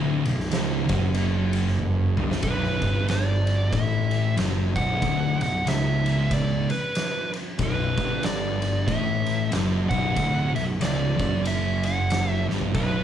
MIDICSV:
0, 0, Header, 1, 5, 480
1, 0, Start_track
1, 0, Key_signature, 2, "minor"
1, 0, Tempo, 643777
1, 1823, Time_signature, 4, 2, 24, 8
1, 9720, End_track
2, 0, Start_track
2, 0, Title_t, "Lead electric guitar"
2, 0, Program_c, 0, 29
2, 1815, Note_on_c, 0, 71, 89
2, 2268, Note_off_c, 0, 71, 0
2, 2312, Note_on_c, 0, 74, 89
2, 2783, Note_off_c, 0, 74, 0
2, 2786, Note_on_c, 0, 76, 93
2, 3234, Note_off_c, 0, 76, 0
2, 3551, Note_on_c, 0, 78, 114
2, 4035, Note_off_c, 0, 78, 0
2, 4044, Note_on_c, 0, 78, 96
2, 4235, Note_off_c, 0, 78, 0
2, 4242, Note_on_c, 0, 76, 99
2, 4722, Note_on_c, 0, 74, 90
2, 4726, Note_off_c, 0, 76, 0
2, 4979, Note_off_c, 0, 74, 0
2, 5002, Note_on_c, 0, 71, 80
2, 5446, Note_off_c, 0, 71, 0
2, 5689, Note_on_c, 0, 71, 88
2, 6148, Note_off_c, 0, 71, 0
2, 6151, Note_on_c, 0, 74, 92
2, 6598, Note_off_c, 0, 74, 0
2, 6617, Note_on_c, 0, 76, 93
2, 7071, Note_off_c, 0, 76, 0
2, 7377, Note_on_c, 0, 78, 112
2, 7836, Note_off_c, 0, 78, 0
2, 7868, Note_on_c, 0, 76, 90
2, 7921, Note_off_c, 0, 76, 0
2, 8069, Note_on_c, 0, 74, 83
2, 8519, Note_off_c, 0, 74, 0
2, 8554, Note_on_c, 0, 76, 84
2, 8819, Note_off_c, 0, 76, 0
2, 8837, Note_on_c, 0, 78, 81
2, 9180, Note_off_c, 0, 78, 0
2, 9180, Note_on_c, 0, 76, 81
2, 9288, Note_off_c, 0, 76, 0
2, 9507, Note_on_c, 0, 71, 89
2, 9720, Note_off_c, 0, 71, 0
2, 9720, End_track
3, 0, Start_track
3, 0, Title_t, "Distorted electric guitar"
3, 0, Program_c, 1, 30
3, 0, Note_on_c, 1, 38, 121
3, 189, Note_off_c, 1, 38, 0
3, 197, Note_on_c, 1, 35, 70
3, 350, Note_off_c, 1, 35, 0
3, 388, Note_on_c, 1, 37, 113
3, 666, Note_off_c, 1, 37, 0
3, 666, Note_on_c, 1, 42, 102
3, 1618, Note_off_c, 1, 42, 0
3, 1620, Note_on_c, 1, 43, 103
3, 1811, Note_off_c, 1, 43, 0
3, 1814, Note_on_c, 1, 35, 109
3, 2090, Note_off_c, 1, 35, 0
3, 2093, Note_on_c, 1, 43, 95
3, 2762, Note_off_c, 1, 43, 0
3, 2765, Note_on_c, 1, 45, 109
3, 3247, Note_off_c, 1, 45, 0
3, 3253, Note_on_c, 1, 42, 101
3, 3535, Note_off_c, 1, 42, 0
3, 3541, Note_on_c, 1, 35, 97
3, 3732, Note_off_c, 1, 35, 0
3, 3739, Note_on_c, 1, 38, 120
3, 4018, Note_off_c, 1, 38, 0
3, 4028, Note_on_c, 1, 35, 66
3, 4183, Note_off_c, 1, 35, 0
3, 4218, Note_on_c, 1, 37, 105
3, 4978, Note_off_c, 1, 37, 0
3, 5658, Note_on_c, 1, 35, 114
3, 5939, Note_off_c, 1, 35, 0
3, 5952, Note_on_c, 1, 43, 102
3, 6616, Note_off_c, 1, 43, 0
3, 6619, Note_on_c, 1, 45, 114
3, 7088, Note_off_c, 1, 45, 0
3, 7091, Note_on_c, 1, 42, 112
3, 7377, Note_off_c, 1, 42, 0
3, 7389, Note_on_c, 1, 35, 106
3, 7576, Note_off_c, 1, 35, 0
3, 7579, Note_on_c, 1, 38, 118
3, 7858, Note_off_c, 1, 38, 0
3, 7861, Note_on_c, 1, 35, 75
3, 8022, Note_off_c, 1, 35, 0
3, 8050, Note_on_c, 1, 37, 100
3, 8344, Note_off_c, 1, 37, 0
3, 8344, Note_on_c, 1, 42, 95
3, 9303, Note_off_c, 1, 42, 0
3, 9309, Note_on_c, 1, 43, 98
3, 9498, Note_off_c, 1, 43, 0
3, 9501, Note_on_c, 1, 35, 111
3, 9720, Note_off_c, 1, 35, 0
3, 9720, End_track
4, 0, Start_track
4, 0, Title_t, "Picked electric bass"
4, 0, Program_c, 2, 34
4, 0, Note_on_c, 2, 26, 104
4, 173, Note_off_c, 2, 26, 0
4, 202, Note_on_c, 2, 23, 83
4, 378, Note_off_c, 2, 23, 0
4, 395, Note_on_c, 2, 25, 102
4, 657, Note_off_c, 2, 25, 0
4, 669, Note_on_c, 2, 30, 99
4, 1598, Note_off_c, 2, 30, 0
4, 1630, Note_on_c, 2, 31, 97
4, 1805, Note_off_c, 2, 31, 0
4, 1810, Note_on_c, 2, 23, 97
4, 2082, Note_off_c, 2, 23, 0
4, 2098, Note_on_c, 2, 31, 94
4, 2746, Note_off_c, 2, 31, 0
4, 2779, Note_on_c, 2, 33, 90
4, 3230, Note_off_c, 2, 33, 0
4, 3259, Note_on_c, 2, 30, 102
4, 3527, Note_off_c, 2, 30, 0
4, 3549, Note_on_c, 2, 23, 97
4, 3728, Note_off_c, 2, 23, 0
4, 3743, Note_on_c, 2, 26, 100
4, 4009, Note_off_c, 2, 26, 0
4, 4028, Note_on_c, 2, 23, 81
4, 4208, Note_off_c, 2, 23, 0
4, 4213, Note_on_c, 2, 25, 99
4, 4955, Note_off_c, 2, 25, 0
4, 5657, Note_on_c, 2, 23, 91
4, 5927, Note_off_c, 2, 23, 0
4, 5947, Note_on_c, 2, 31, 90
4, 6593, Note_off_c, 2, 31, 0
4, 6621, Note_on_c, 2, 33, 92
4, 7073, Note_off_c, 2, 33, 0
4, 7095, Note_on_c, 2, 30, 104
4, 7367, Note_off_c, 2, 30, 0
4, 7383, Note_on_c, 2, 23, 91
4, 7567, Note_off_c, 2, 23, 0
4, 7577, Note_on_c, 2, 26, 97
4, 7848, Note_off_c, 2, 26, 0
4, 7870, Note_on_c, 2, 23, 82
4, 8052, Note_off_c, 2, 23, 0
4, 8058, Note_on_c, 2, 25, 98
4, 8329, Note_off_c, 2, 25, 0
4, 8349, Note_on_c, 2, 30, 94
4, 9285, Note_off_c, 2, 30, 0
4, 9312, Note_on_c, 2, 31, 98
4, 9494, Note_off_c, 2, 31, 0
4, 9505, Note_on_c, 2, 23, 98
4, 9720, Note_off_c, 2, 23, 0
4, 9720, End_track
5, 0, Start_track
5, 0, Title_t, "Drums"
5, 190, Note_on_c, 9, 51, 78
5, 264, Note_off_c, 9, 51, 0
5, 297, Note_on_c, 9, 38, 34
5, 372, Note_off_c, 9, 38, 0
5, 384, Note_on_c, 9, 51, 109
5, 394, Note_on_c, 9, 38, 113
5, 458, Note_off_c, 9, 51, 0
5, 469, Note_off_c, 9, 38, 0
5, 663, Note_on_c, 9, 51, 84
5, 668, Note_on_c, 9, 36, 111
5, 738, Note_off_c, 9, 51, 0
5, 742, Note_off_c, 9, 36, 0
5, 854, Note_on_c, 9, 51, 103
5, 928, Note_off_c, 9, 51, 0
5, 1140, Note_on_c, 9, 51, 74
5, 1215, Note_off_c, 9, 51, 0
5, 1247, Note_on_c, 9, 38, 35
5, 1321, Note_off_c, 9, 38, 0
5, 1335, Note_on_c, 9, 48, 71
5, 1410, Note_off_c, 9, 48, 0
5, 1620, Note_on_c, 9, 45, 90
5, 1694, Note_off_c, 9, 45, 0
5, 1726, Note_on_c, 9, 38, 95
5, 1801, Note_off_c, 9, 38, 0
5, 1808, Note_on_c, 9, 51, 88
5, 1813, Note_on_c, 9, 36, 105
5, 1883, Note_off_c, 9, 51, 0
5, 1888, Note_off_c, 9, 36, 0
5, 1970, Note_on_c, 9, 38, 33
5, 2045, Note_off_c, 9, 38, 0
5, 2101, Note_on_c, 9, 51, 70
5, 2102, Note_on_c, 9, 36, 105
5, 2176, Note_off_c, 9, 36, 0
5, 2176, Note_off_c, 9, 51, 0
5, 2300, Note_on_c, 9, 51, 87
5, 2310, Note_on_c, 9, 38, 108
5, 2374, Note_off_c, 9, 51, 0
5, 2385, Note_off_c, 9, 38, 0
5, 2586, Note_on_c, 9, 51, 68
5, 2661, Note_off_c, 9, 51, 0
5, 2778, Note_on_c, 9, 36, 107
5, 2781, Note_on_c, 9, 51, 94
5, 2853, Note_off_c, 9, 36, 0
5, 2855, Note_off_c, 9, 51, 0
5, 3065, Note_on_c, 9, 51, 67
5, 3139, Note_off_c, 9, 51, 0
5, 3261, Note_on_c, 9, 51, 100
5, 3272, Note_on_c, 9, 38, 116
5, 3336, Note_off_c, 9, 51, 0
5, 3346, Note_off_c, 9, 38, 0
5, 3548, Note_on_c, 9, 36, 102
5, 3552, Note_on_c, 9, 51, 70
5, 3622, Note_off_c, 9, 36, 0
5, 3627, Note_off_c, 9, 51, 0
5, 3743, Note_on_c, 9, 36, 104
5, 3744, Note_on_c, 9, 51, 93
5, 3818, Note_off_c, 9, 36, 0
5, 3819, Note_off_c, 9, 51, 0
5, 4033, Note_on_c, 9, 51, 76
5, 4107, Note_off_c, 9, 51, 0
5, 4227, Note_on_c, 9, 51, 99
5, 4238, Note_on_c, 9, 38, 112
5, 4302, Note_off_c, 9, 51, 0
5, 4312, Note_off_c, 9, 38, 0
5, 4517, Note_on_c, 9, 51, 75
5, 4592, Note_off_c, 9, 51, 0
5, 4704, Note_on_c, 9, 51, 103
5, 4705, Note_on_c, 9, 36, 103
5, 4778, Note_off_c, 9, 51, 0
5, 4779, Note_off_c, 9, 36, 0
5, 4994, Note_on_c, 9, 51, 73
5, 5068, Note_off_c, 9, 51, 0
5, 5184, Note_on_c, 9, 51, 102
5, 5194, Note_on_c, 9, 38, 114
5, 5258, Note_off_c, 9, 51, 0
5, 5269, Note_off_c, 9, 38, 0
5, 5469, Note_on_c, 9, 51, 70
5, 5544, Note_off_c, 9, 51, 0
5, 5657, Note_on_c, 9, 51, 92
5, 5660, Note_on_c, 9, 36, 108
5, 5732, Note_off_c, 9, 51, 0
5, 5735, Note_off_c, 9, 36, 0
5, 5946, Note_on_c, 9, 51, 67
5, 5947, Note_on_c, 9, 36, 101
5, 6021, Note_off_c, 9, 36, 0
5, 6021, Note_off_c, 9, 51, 0
5, 6137, Note_on_c, 9, 51, 93
5, 6147, Note_on_c, 9, 38, 112
5, 6212, Note_off_c, 9, 51, 0
5, 6222, Note_off_c, 9, 38, 0
5, 6427, Note_on_c, 9, 51, 72
5, 6501, Note_off_c, 9, 51, 0
5, 6619, Note_on_c, 9, 36, 108
5, 6622, Note_on_c, 9, 51, 91
5, 6694, Note_off_c, 9, 36, 0
5, 6697, Note_off_c, 9, 51, 0
5, 6907, Note_on_c, 9, 51, 67
5, 6982, Note_off_c, 9, 51, 0
5, 7097, Note_on_c, 9, 51, 97
5, 7108, Note_on_c, 9, 38, 121
5, 7172, Note_off_c, 9, 51, 0
5, 7182, Note_off_c, 9, 38, 0
5, 7386, Note_on_c, 9, 36, 96
5, 7386, Note_on_c, 9, 51, 69
5, 7461, Note_off_c, 9, 36, 0
5, 7461, Note_off_c, 9, 51, 0
5, 7579, Note_on_c, 9, 36, 107
5, 7579, Note_on_c, 9, 51, 98
5, 7654, Note_off_c, 9, 36, 0
5, 7654, Note_off_c, 9, 51, 0
5, 7872, Note_on_c, 9, 51, 72
5, 7947, Note_off_c, 9, 51, 0
5, 8060, Note_on_c, 9, 51, 100
5, 8070, Note_on_c, 9, 38, 114
5, 8134, Note_off_c, 9, 51, 0
5, 8145, Note_off_c, 9, 38, 0
5, 8346, Note_on_c, 9, 51, 76
5, 8348, Note_on_c, 9, 36, 110
5, 8421, Note_off_c, 9, 51, 0
5, 8422, Note_off_c, 9, 36, 0
5, 8540, Note_on_c, 9, 51, 106
5, 8615, Note_off_c, 9, 51, 0
5, 8824, Note_on_c, 9, 51, 76
5, 8899, Note_off_c, 9, 51, 0
5, 9025, Note_on_c, 9, 51, 99
5, 9035, Note_on_c, 9, 38, 116
5, 9099, Note_off_c, 9, 51, 0
5, 9110, Note_off_c, 9, 38, 0
5, 9320, Note_on_c, 9, 38, 60
5, 9395, Note_off_c, 9, 38, 0
5, 9405, Note_on_c, 9, 43, 88
5, 9479, Note_off_c, 9, 43, 0
5, 9502, Note_on_c, 9, 51, 93
5, 9504, Note_on_c, 9, 36, 106
5, 9577, Note_off_c, 9, 51, 0
5, 9579, Note_off_c, 9, 36, 0
5, 9720, End_track
0, 0, End_of_file